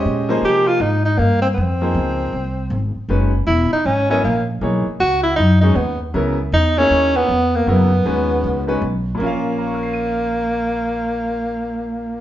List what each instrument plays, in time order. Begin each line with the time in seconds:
Already playing: upright piano G#3 C#4 G4 C5 D#5
0.05 upright bass A#2
0.29 upright piano F3 A#3 D#4 G#4 C5
0.43 upright bass C3, tenor saxophone G4
0.68 tenor saxophone F4
0.80 upright bass G#2, tenor saxophone D#4
1.05 tenor saxophone D#4
1.18 upright bass G2, tenor saxophone A#3
1.42 tenor saxophone C4
1.55 upright bass F2, tenor saxophone C4
1.81 upright piano F3 A#3 D#4 G#4 C5
1.95 upright bass C#2
2.33 upright bass C2
2.70 upright bass G#1
2.95 muted upright bass stroke
3.09 upright bass F#1, upright piano D#3 G#3 C#4 F#4 B4
3.47 upright bass E1, tenor saxophone E4
3.72 tenor saxophone D#4, muted upright bass stroke
3.85 upright bass G#1, tenor saxophone C#4
4.09 upright piano F#3 B3 E4 A#4 D#5, tenor saxophone C#4
4.24 upright bass A#1, tenor saxophone A#3
4.61 upright bass B1, upright piano E3 A#3 D#4 G#4 C#5
4.86 muted upright bass stroke
5.00 upright bass C#2, tenor saxophone F#4
5.23 tenor saxophone E4
5.36 upright bass F#2, tenor saxophone D#4
5.61 upright piano D#3 G#3 C#4 F#4 G#4, tenor saxophone D#4
5.76 upright bass D#2, tenor saxophone B3
6.14 upright bass C#2, upright piano C#3 F#3 B3 E4 A#4
6.52 upright bass E2, tenor saxophone D#4
6.77 upright piano A#3 D#4 E4 G#4 C#5, tenor saxophone C#4
6.90 upright bass D#2
7.16 tenor saxophone B3
7.29 upright bass E2
7.56 tenor saxophone A#3
7.67 upright bass F#2, upright piano C#3 F#3 B3 E4 A#4, tenor saxophone B3
8.05 upright bass D#2, upright piano D#3 G#3 C#4 F#4 B4
8.44 upright bass C#2
8.67 upright piano D#3 G#3 C#4 F#4 B4
8.82 upright bass B1
9.15 upright piano A#2 A#3
9.20 upright bass A#1, tenor saxophone A#3, upright piano C#4 F4
9.27 upright piano F5
9.58 upright piano A#5
9.66 upright piano C#6
9.74 upright piano F6
9.83 upright piano C7
9.93 upright piano D#7